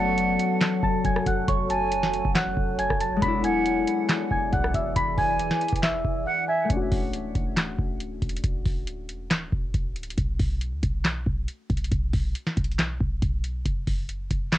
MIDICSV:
0, 0, Header, 1, 7, 480
1, 0, Start_track
1, 0, Tempo, 434783
1, 1636, Time_signature, 4, 2, 24, 8
1, 16099, End_track
2, 0, Start_track
2, 0, Title_t, "Celesta"
2, 0, Program_c, 0, 8
2, 0, Note_on_c, 0, 81, 90
2, 0, Note_on_c, 0, 93, 60
2, 872, Note_off_c, 0, 81, 0
2, 876, Note_off_c, 0, 93, 0
2, 916, Note_on_c, 0, 81, 86
2, 925, Note_on_c, 0, 93, 68
2, 1111, Note_off_c, 0, 81, 0
2, 1116, Note_off_c, 0, 93, 0
2, 1156, Note_on_c, 0, 80, 87
2, 1165, Note_on_c, 0, 92, 62
2, 1351, Note_off_c, 0, 80, 0
2, 1357, Note_off_c, 0, 92, 0
2, 1398, Note_on_c, 0, 78, 71
2, 1407, Note_on_c, 0, 90, 59
2, 1592, Note_off_c, 0, 78, 0
2, 1597, Note_off_c, 0, 90, 0
2, 1636, Note_on_c, 0, 85, 98
2, 1645, Note_on_c, 0, 73, 75
2, 1831, Note_off_c, 0, 85, 0
2, 1837, Note_off_c, 0, 73, 0
2, 1877, Note_on_c, 0, 81, 87
2, 1886, Note_on_c, 0, 93, 70
2, 2553, Note_off_c, 0, 81, 0
2, 2558, Note_off_c, 0, 93, 0
2, 2596, Note_on_c, 0, 78, 78
2, 2604, Note_on_c, 0, 90, 60
2, 3047, Note_off_c, 0, 78, 0
2, 3052, Note_off_c, 0, 90, 0
2, 3076, Note_on_c, 0, 80, 89
2, 3085, Note_on_c, 0, 92, 66
2, 3271, Note_off_c, 0, 80, 0
2, 3276, Note_off_c, 0, 92, 0
2, 3315, Note_on_c, 0, 81, 74
2, 3324, Note_on_c, 0, 93, 62
2, 3510, Note_off_c, 0, 81, 0
2, 3516, Note_off_c, 0, 93, 0
2, 3556, Note_on_c, 0, 83, 98
2, 3564, Note_on_c, 0, 95, 84
2, 3751, Note_off_c, 0, 83, 0
2, 3756, Note_off_c, 0, 95, 0
2, 3796, Note_on_c, 0, 80, 90
2, 3805, Note_on_c, 0, 92, 69
2, 4712, Note_off_c, 0, 80, 0
2, 4716, Note_off_c, 0, 92, 0
2, 4756, Note_on_c, 0, 80, 83
2, 4765, Note_on_c, 0, 92, 70
2, 4951, Note_off_c, 0, 80, 0
2, 4957, Note_off_c, 0, 92, 0
2, 4996, Note_on_c, 0, 78, 80
2, 5005, Note_on_c, 0, 90, 64
2, 5191, Note_off_c, 0, 78, 0
2, 5196, Note_off_c, 0, 90, 0
2, 5236, Note_on_c, 0, 76, 68
2, 5245, Note_on_c, 0, 88, 58
2, 5431, Note_off_c, 0, 76, 0
2, 5437, Note_off_c, 0, 88, 0
2, 5477, Note_on_c, 0, 83, 102
2, 5486, Note_on_c, 0, 95, 70
2, 5672, Note_off_c, 0, 83, 0
2, 5677, Note_off_c, 0, 95, 0
2, 5715, Note_on_c, 0, 80, 86
2, 5724, Note_on_c, 0, 92, 68
2, 6392, Note_off_c, 0, 80, 0
2, 6397, Note_off_c, 0, 92, 0
2, 6437, Note_on_c, 0, 76, 77
2, 6445, Note_on_c, 0, 88, 62
2, 6887, Note_off_c, 0, 76, 0
2, 6892, Note_off_c, 0, 88, 0
2, 6915, Note_on_c, 0, 78, 81
2, 6924, Note_on_c, 0, 90, 62
2, 7110, Note_off_c, 0, 78, 0
2, 7116, Note_off_c, 0, 90, 0
2, 7155, Note_on_c, 0, 80, 72
2, 7164, Note_on_c, 0, 92, 58
2, 7350, Note_off_c, 0, 80, 0
2, 7356, Note_off_c, 0, 92, 0
2, 16099, End_track
3, 0, Start_track
3, 0, Title_t, "Flute"
3, 0, Program_c, 1, 73
3, 0, Note_on_c, 1, 78, 91
3, 633, Note_off_c, 1, 78, 0
3, 1876, Note_on_c, 1, 80, 87
3, 2553, Note_off_c, 1, 80, 0
3, 3795, Note_on_c, 1, 78, 83
3, 4472, Note_off_c, 1, 78, 0
3, 5716, Note_on_c, 1, 80, 85
3, 6393, Note_off_c, 1, 80, 0
3, 6916, Note_on_c, 1, 78, 87
3, 7144, Note_off_c, 1, 78, 0
3, 7155, Note_on_c, 1, 76, 84
3, 7384, Note_off_c, 1, 76, 0
3, 16099, End_track
4, 0, Start_track
4, 0, Title_t, "Ambient pad"
4, 0, Program_c, 2, 92
4, 0, Note_on_c, 2, 54, 88
4, 0, Note_on_c, 2, 66, 76
4, 0, Note_on_c, 2, 69, 80
4, 0, Note_on_c, 2, 73, 97
4, 3512, Note_off_c, 2, 66, 0
4, 3512, Note_off_c, 2, 69, 0
4, 3517, Note_off_c, 2, 54, 0
4, 3517, Note_off_c, 2, 73, 0
4, 3557, Note_on_c, 2, 52, 89
4, 3557, Note_on_c, 2, 64, 80
4, 3557, Note_on_c, 2, 68, 82
4, 3557, Note_on_c, 2, 74, 96
4, 7358, Note_off_c, 2, 52, 0
4, 7358, Note_off_c, 2, 64, 0
4, 7358, Note_off_c, 2, 68, 0
4, 7358, Note_off_c, 2, 74, 0
4, 16099, End_track
5, 0, Start_track
5, 0, Title_t, "Harp"
5, 0, Program_c, 3, 46
5, 0, Note_on_c, 3, 54, 70
5, 0, Note_on_c, 3, 57, 64
5, 0, Note_on_c, 3, 59, 46
5, 0, Note_on_c, 3, 61, 65
5, 0, Note_on_c, 3, 66, 82
5, 2416, Note_off_c, 3, 59, 0
5, 3492, Note_on_c, 3, 56, 75
5, 3529, Note_off_c, 3, 61, 0
5, 3534, Note_on_c, 3, 59, 64
5, 3550, Note_off_c, 3, 66, 0
5, 3558, Note_off_c, 3, 57, 0
5, 3577, Note_on_c, 3, 62, 63
5, 3611, Note_off_c, 3, 54, 0
5, 3619, Note_on_c, 3, 64, 79
5, 7340, Note_on_c, 3, 57, 68
5, 7341, Note_off_c, 3, 59, 0
5, 7362, Note_off_c, 3, 62, 0
5, 7382, Note_on_c, 3, 61, 66
5, 7383, Note_off_c, 3, 64, 0
5, 7424, Note_on_c, 3, 62, 66
5, 7451, Note_off_c, 3, 56, 0
5, 7467, Note_on_c, 3, 66, 77
5, 10157, Note_off_c, 3, 66, 0
5, 10515, Note_off_c, 3, 62, 0
5, 10582, Note_off_c, 3, 61, 0
5, 11015, Note_off_c, 3, 57, 0
5, 16099, End_track
6, 0, Start_track
6, 0, Title_t, "808-style bass"
6, 0, Program_c, 4, 38
6, 0, Note_on_c, 4, 30, 112
6, 407, Note_off_c, 4, 30, 0
6, 916, Note_on_c, 4, 30, 105
6, 1146, Note_off_c, 4, 30, 0
6, 1156, Note_on_c, 4, 30, 105
6, 1387, Note_off_c, 4, 30, 0
6, 1396, Note_on_c, 4, 30, 110
6, 1626, Note_off_c, 4, 30, 0
6, 1636, Note_on_c, 4, 30, 114
6, 2449, Note_off_c, 4, 30, 0
6, 2483, Note_on_c, 4, 30, 102
6, 2822, Note_off_c, 4, 30, 0
6, 2837, Note_on_c, 4, 30, 108
6, 3189, Note_off_c, 4, 30, 0
6, 3204, Note_on_c, 4, 30, 103
6, 3542, Note_off_c, 4, 30, 0
6, 3556, Note_on_c, 4, 28, 113
6, 4247, Note_off_c, 4, 28, 0
6, 4756, Note_on_c, 4, 28, 108
6, 4986, Note_off_c, 4, 28, 0
6, 4996, Note_on_c, 4, 35, 109
6, 5226, Note_off_c, 4, 35, 0
6, 5235, Note_on_c, 4, 28, 108
6, 5466, Note_off_c, 4, 28, 0
6, 5476, Note_on_c, 4, 28, 110
6, 5706, Note_off_c, 4, 28, 0
6, 5717, Note_on_c, 4, 28, 107
6, 6069, Note_off_c, 4, 28, 0
6, 6323, Note_on_c, 4, 28, 104
6, 6662, Note_off_c, 4, 28, 0
6, 6676, Note_on_c, 4, 28, 102
6, 6906, Note_off_c, 4, 28, 0
6, 7395, Note_on_c, 4, 26, 112
6, 7626, Note_off_c, 4, 26, 0
6, 7637, Note_on_c, 4, 26, 109
6, 8097, Note_off_c, 4, 26, 0
6, 8116, Note_on_c, 4, 26, 105
6, 8577, Note_off_c, 4, 26, 0
6, 8596, Note_on_c, 4, 26, 101
6, 9057, Note_off_c, 4, 26, 0
6, 9075, Note_on_c, 4, 26, 109
6, 9306, Note_off_c, 4, 26, 0
6, 9315, Note_on_c, 4, 26, 115
6, 9546, Note_off_c, 4, 26, 0
6, 9557, Note_on_c, 4, 26, 106
6, 10035, Note_on_c, 4, 28, 96
6, 10052, Note_off_c, 4, 26, 0
6, 10276, Note_on_c, 4, 26, 100
6, 10292, Note_off_c, 4, 28, 0
6, 10504, Note_off_c, 4, 26, 0
6, 10516, Note_on_c, 4, 26, 104
6, 10746, Note_off_c, 4, 26, 0
6, 10756, Note_on_c, 4, 26, 104
6, 11217, Note_off_c, 4, 26, 0
6, 11236, Note_on_c, 4, 35, 108
6, 11466, Note_off_c, 4, 35, 0
6, 11477, Note_on_c, 4, 35, 111
6, 11843, Note_on_c, 4, 38, 96
6, 11859, Note_off_c, 4, 35, 0
6, 11950, Note_off_c, 4, 38, 0
6, 11956, Note_on_c, 4, 35, 103
6, 12417, Note_off_c, 4, 35, 0
6, 12436, Note_on_c, 4, 35, 105
6, 12666, Note_off_c, 4, 35, 0
6, 12915, Note_on_c, 4, 35, 111
6, 13146, Note_off_c, 4, 35, 0
6, 13156, Note_on_c, 4, 35, 109
6, 13386, Note_off_c, 4, 35, 0
6, 13396, Note_on_c, 4, 35, 105
6, 13627, Note_off_c, 4, 35, 0
6, 13876, Note_on_c, 4, 35, 102
6, 14337, Note_off_c, 4, 35, 0
6, 14356, Note_on_c, 4, 35, 101
6, 14586, Note_off_c, 4, 35, 0
6, 14596, Note_on_c, 4, 35, 105
6, 15057, Note_off_c, 4, 35, 0
6, 15076, Note_on_c, 4, 30, 110
6, 15306, Note_off_c, 4, 30, 0
6, 15317, Note_on_c, 4, 30, 107
6, 15777, Note_off_c, 4, 30, 0
6, 15796, Note_on_c, 4, 30, 104
6, 16099, Note_off_c, 4, 30, 0
6, 16099, End_track
7, 0, Start_track
7, 0, Title_t, "Drums"
7, 197, Note_on_c, 9, 42, 80
7, 307, Note_off_c, 9, 42, 0
7, 436, Note_on_c, 9, 42, 69
7, 547, Note_off_c, 9, 42, 0
7, 676, Note_on_c, 9, 42, 80
7, 677, Note_on_c, 9, 38, 126
7, 680, Note_on_c, 9, 39, 102
7, 787, Note_off_c, 9, 38, 0
7, 787, Note_off_c, 9, 42, 0
7, 790, Note_off_c, 9, 39, 0
7, 916, Note_on_c, 9, 36, 97
7, 1027, Note_off_c, 9, 36, 0
7, 1156, Note_on_c, 9, 42, 70
7, 1157, Note_on_c, 9, 36, 98
7, 1267, Note_off_c, 9, 36, 0
7, 1267, Note_off_c, 9, 42, 0
7, 1284, Note_on_c, 9, 37, 99
7, 1394, Note_off_c, 9, 37, 0
7, 1396, Note_on_c, 9, 36, 86
7, 1396, Note_on_c, 9, 42, 80
7, 1506, Note_off_c, 9, 36, 0
7, 1507, Note_off_c, 9, 42, 0
7, 1636, Note_on_c, 9, 36, 119
7, 1637, Note_on_c, 9, 42, 98
7, 1747, Note_off_c, 9, 36, 0
7, 1747, Note_off_c, 9, 42, 0
7, 1876, Note_on_c, 9, 42, 84
7, 1987, Note_off_c, 9, 42, 0
7, 2116, Note_on_c, 9, 42, 82
7, 2227, Note_off_c, 9, 42, 0
7, 2243, Note_on_c, 9, 38, 64
7, 2353, Note_off_c, 9, 38, 0
7, 2357, Note_on_c, 9, 42, 67
7, 2467, Note_off_c, 9, 42, 0
7, 2484, Note_on_c, 9, 36, 103
7, 2594, Note_off_c, 9, 36, 0
7, 2596, Note_on_c, 9, 42, 80
7, 2597, Note_on_c, 9, 38, 123
7, 2600, Note_on_c, 9, 39, 100
7, 2707, Note_off_c, 9, 38, 0
7, 2707, Note_off_c, 9, 42, 0
7, 2710, Note_off_c, 9, 39, 0
7, 2837, Note_on_c, 9, 36, 100
7, 2947, Note_off_c, 9, 36, 0
7, 3077, Note_on_c, 9, 42, 72
7, 3187, Note_off_c, 9, 42, 0
7, 3203, Note_on_c, 9, 36, 95
7, 3204, Note_on_c, 9, 37, 94
7, 3314, Note_off_c, 9, 36, 0
7, 3314, Note_off_c, 9, 37, 0
7, 3316, Note_on_c, 9, 42, 81
7, 3427, Note_off_c, 9, 42, 0
7, 3556, Note_on_c, 9, 36, 116
7, 3556, Note_on_c, 9, 42, 94
7, 3666, Note_off_c, 9, 36, 0
7, 3666, Note_off_c, 9, 42, 0
7, 3796, Note_on_c, 9, 42, 91
7, 3907, Note_off_c, 9, 42, 0
7, 4036, Note_on_c, 9, 42, 83
7, 4147, Note_off_c, 9, 42, 0
7, 4276, Note_on_c, 9, 42, 69
7, 4387, Note_off_c, 9, 42, 0
7, 4516, Note_on_c, 9, 38, 123
7, 4516, Note_on_c, 9, 42, 82
7, 4520, Note_on_c, 9, 39, 102
7, 4627, Note_off_c, 9, 38, 0
7, 4627, Note_off_c, 9, 42, 0
7, 4630, Note_off_c, 9, 39, 0
7, 4756, Note_on_c, 9, 36, 94
7, 4867, Note_off_c, 9, 36, 0
7, 4996, Note_on_c, 9, 36, 96
7, 4996, Note_on_c, 9, 42, 70
7, 5106, Note_off_c, 9, 36, 0
7, 5106, Note_off_c, 9, 42, 0
7, 5124, Note_on_c, 9, 37, 94
7, 5234, Note_off_c, 9, 37, 0
7, 5235, Note_on_c, 9, 36, 88
7, 5236, Note_on_c, 9, 42, 80
7, 5346, Note_off_c, 9, 36, 0
7, 5347, Note_off_c, 9, 42, 0
7, 5476, Note_on_c, 9, 36, 122
7, 5476, Note_on_c, 9, 42, 96
7, 5586, Note_off_c, 9, 36, 0
7, 5587, Note_off_c, 9, 42, 0
7, 5716, Note_on_c, 9, 46, 85
7, 5717, Note_on_c, 9, 36, 104
7, 5826, Note_off_c, 9, 46, 0
7, 5827, Note_off_c, 9, 36, 0
7, 5956, Note_on_c, 9, 42, 81
7, 6066, Note_off_c, 9, 42, 0
7, 6082, Note_on_c, 9, 38, 64
7, 6192, Note_off_c, 9, 38, 0
7, 6196, Note_on_c, 9, 42, 42
7, 6276, Note_off_c, 9, 42, 0
7, 6276, Note_on_c, 9, 42, 57
7, 6323, Note_on_c, 9, 36, 106
7, 6356, Note_off_c, 9, 42, 0
7, 6356, Note_on_c, 9, 42, 70
7, 6434, Note_off_c, 9, 36, 0
7, 6436, Note_off_c, 9, 42, 0
7, 6436, Note_on_c, 9, 38, 122
7, 6436, Note_on_c, 9, 42, 83
7, 6439, Note_on_c, 9, 39, 98
7, 6546, Note_off_c, 9, 38, 0
7, 6546, Note_off_c, 9, 42, 0
7, 6550, Note_off_c, 9, 39, 0
7, 6676, Note_on_c, 9, 36, 101
7, 6786, Note_off_c, 9, 36, 0
7, 7395, Note_on_c, 9, 36, 114
7, 7395, Note_on_c, 9, 42, 94
7, 7506, Note_off_c, 9, 36, 0
7, 7506, Note_off_c, 9, 42, 0
7, 7635, Note_on_c, 9, 46, 86
7, 7637, Note_on_c, 9, 36, 103
7, 7746, Note_off_c, 9, 46, 0
7, 7747, Note_off_c, 9, 36, 0
7, 7875, Note_on_c, 9, 42, 79
7, 7986, Note_off_c, 9, 42, 0
7, 8115, Note_on_c, 9, 42, 65
7, 8116, Note_on_c, 9, 36, 98
7, 8226, Note_off_c, 9, 36, 0
7, 8226, Note_off_c, 9, 42, 0
7, 8355, Note_on_c, 9, 42, 83
7, 8356, Note_on_c, 9, 38, 125
7, 8359, Note_on_c, 9, 39, 98
7, 8466, Note_off_c, 9, 38, 0
7, 8466, Note_off_c, 9, 42, 0
7, 8469, Note_off_c, 9, 39, 0
7, 8596, Note_on_c, 9, 36, 95
7, 8706, Note_off_c, 9, 36, 0
7, 8836, Note_on_c, 9, 42, 70
7, 8946, Note_off_c, 9, 42, 0
7, 9075, Note_on_c, 9, 36, 84
7, 9075, Note_on_c, 9, 42, 49
7, 9156, Note_off_c, 9, 42, 0
7, 9156, Note_on_c, 9, 42, 65
7, 9186, Note_off_c, 9, 36, 0
7, 9236, Note_off_c, 9, 42, 0
7, 9236, Note_on_c, 9, 42, 82
7, 9316, Note_off_c, 9, 42, 0
7, 9316, Note_on_c, 9, 36, 112
7, 9316, Note_on_c, 9, 42, 90
7, 9426, Note_off_c, 9, 36, 0
7, 9426, Note_off_c, 9, 42, 0
7, 9556, Note_on_c, 9, 46, 85
7, 9557, Note_on_c, 9, 36, 98
7, 9666, Note_off_c, 9, 46, 0
7, 9667, Note_off_c, 9, 36, 0
7, 9796, Note_on_c, 9, 42, 79
7, 9906, Note_off_c, 9, 42, 0
7, 10036, Note_on_c, 9, 42, 68
7, 10146, Note_off_c, 9, 42, 0
7, 10276, Note_on_c, 9, 38, 122
7, 10276, Note_on_c, 9, 42, 83
7, 10279, Note_on_c, 9, 39, 98
7, 10386, Note_off_c, 9, 42, 0
7, 10387, Note_off_c, 9, 38, 0
7, 10390, Note_off_c, 9, 39, 0
7, 10516, Note_on_c, 9, 36, 94
7, 10626, Note_off_c, 9, 36, 0
7, 10756, Note_on_c, 9, 36, 94
7, 10756, Note_on_c, 9, 42, 69
7, 10866, Note_off_c, 9, 36, 0
7, 10866, Note_off_c, 9, 42, 0
7, 10996, Note_on_c, 9, 42, 50
7, 11076, Note_off_c, 9, 42, 0
7, 11076, Note_on_c, 9, 42, 66
7, 11156, Note_off_c, 9, 42, 0
7, 11156, Note_on_c, 9, 42, 80
7, 11236, Note_off_c, 9, 42, 0
7, 11236, Note_on_c, 9, 36, 115
7, 11236, Note_on_c, 9, 42, 94
7, 11346, Note_off_c, 9, 36, 0
7, 11346, Note_off_c, 9, 42, 0
7, 11476, Note_on_c, 9, 46, 85
7, 11477, Note_on_c, 9, 36, 101
7, 11586, Note_off_c, 9, 46, 0
7, 11587, Note_off_c, 9, 36, 0
7, 11716, Note_on_c, 9, 42, 79
7, 11826, Note_off_c, 9, 42, 0
7, 11956, Note_on_c, 9, 36, 97
7, 11956, Note_on_c, 9, 42, 68
7, 12066, Note_off_c, 9, 36, 0
7, 12066, Note_off_c, 9, 42, 0
7, 12195, Note_on_c, 9, 42, 77
7, 12196, Note_on_c, 9, 38, 118
7, 12199, Note_on_c, 9, 39, 99
7, 12306, Note_off_c, 9, 38, 0
7, 12306, Note_off_c, 9, 42, 0
7, 12309, Note_off_c, 9, 39, 0
7, 12436, Note_on_c, 9, 36, 96
7, 12546, Note_off_c, 9, 36, 0
7, 12675, Note_on_c, 9, 42, 67
7, 12786, Note_off_c, 9, 42, 0
7, 12915, Note_on_c, 9, 36, 85
7, 12915, Note_on_c, 9, 42, 49
7, 12995, Note_off_c, 9, 42, 0
7, 12995, Note_on_c, 9, 42, 65
7, 13026, Note_off_c, 9, 36, 0
7, 13076, Note_off_c, 9, 42, 0
7, 13076, Note_on_c, 9, 42, 82
7, 13155, Note_off_c, 9, 42, 0
7, 13155, Note_on_c, 9, 36, 111
7, 13155, Note_on_c, 9, 42, 89
7, 13266, Note_off_c, 9, 36, 0
7, 13266, Note_off_c, 9, 42, 0
7, 13395, Note_on_c, 9, 46, 85
7, 13397, Note_on_c, 9, 36, 101
7, 13506, Note_off_c, 9, 46, 0
7, 13507, Note_off_c, 9, 36, 0
7, 13635, Note_on_c, 9, 42, 78
7, 13746, Note_off_c, 9, 42, 0
7, 13762, Note_on_c, 9, 38, 61
7, 13873, Note_off_c, 9, 38, 0
7, 13876, Note_on_c, 9, 36, 98
7, 13876, Note_on_c, 9, 42, 67
7, 13956, Note_off_c, 9, 42, 0
7, 13956, Note_on_c, 9, 42, 56
7, 13987, Note_off_c, 9, 36, 0
7, 14036, Note_off_c, 9, 42, 0
7, 14036, Note_on_c, 9, 42, 41
7, 14116, Note_off_c, 9, 42, 0
7, 14116, Note_on_c, 9, 38, 120
7, 14116, Note_on_c, 9, 42, 80
7, 14119, Note_on_c, 9, 39, 96
7, 14226, Note_off_c, 9, 42, 0
7, 14227, Note_off_c, 9, 38, 0
7, 14230, Note_off_c, 9, 39, 0
7, 14356, Note_on_c, 9, 36, 95
7, 14467, Note_off_c, 9, 36, 0
7, 14596, Note_on_c, 9, 36, 97
7, 14596, Note_on_c, 9, 42, 69
7, 14707, Note_off_c, 9, 36, 0
7, 14707, Note_off_c, 9, 42, 0
7, 14836, Note_on_c, 9, 42, 78
7, 14947, Note_off_c, 9, 42, 0
7, 15076, Note_on_c, 9, 36, 111
7, 15076, Note_on_c, 9, 42, 95
7, 15186, Note_off_c, 9, 36, 0
7, 15186, Note_off_c, 9, 42, 0
7, 15316, Note_on_c, 9, 46, 86
7, 15317, Note_on_c, 9, 36, 99
7, 15427, Note_off_c, 9, 46, 0
7, 15428, Note_off_c, 9, 36, 0
7, 15556, Note_on_c, 9, 42, 79
7, 15667, Note_off_c, 9, 42, 0
7, 15796, Note_on_c, 9, 36, 97
7, 15796, Note_on_c, 9, 42, 67
7, 15907, Note_off_c, 9, 36, 0
7, 15907, Note_off_c, 9, 42, 0
7, 16036, Note_on_c, 9, 38, 122
7, 16036, Note_on_c, 9, 42, 79
7, 16039, Note_on_c, 9, 39, 99
7, 16099, Note_off_c, 9, 38, 0
7, 16099, Note_off_c, 9, 39, 0
7, 16099, Note_off_c, 9, 42, 0
7, 16099, End_track
0, 0, End_of_file